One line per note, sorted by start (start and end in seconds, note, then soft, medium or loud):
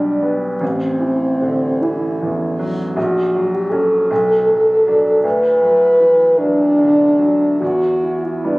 0.00 0.57 B1 soft
0.00 0.21 G3 soft
0.00 0.35 D4 medium
0.22 0.58 G3 soft
0.22 0.58 B3 soft
0.61 2.92 A1 soft
0.61 1.83 C4 medium
1.00 1.65 E3 soft
1.42 1.82 D3 soft
1.81 2.44 E3 soft
1.81 2.21 E4 medium
2.22 2.82 E2 soft
2.59 2.97 F#3 soft
2.96 4.07 A#1 soft
2.96 3.55 F#4 medium
3.35 3.70 F#3 soft
3.54 3.72 G4 medium
3.70 4.06 F#3 soft
3.70 4.07 C#4 soft
3.70 5.23 A4 medium
4.11 5.21 B1 soft
4.49 4.86 F#3 soft
4.87 5.21 F#3 soft
4.87 5.21 D4 soft
5.24 7.57 D2 soft
5.24 6.40 B4 medium
5.61 6.23 F#3 soft
6.00 6.39 E3 soft
6.38 7.03 F#3 soft
6.38 7.60 D4 medium
6.79 7.45 D3 soft
7.19 7.61 F#3 soft
7.60 8.59 E2 soft
7.60 8.25 F#4 medium
8.03 8.59 E3 soft
8.24 8.48 E4 medium
8.44 8.59 G3 soft
8.44 8.59 B3 soft
8.44 8.59 D4 medium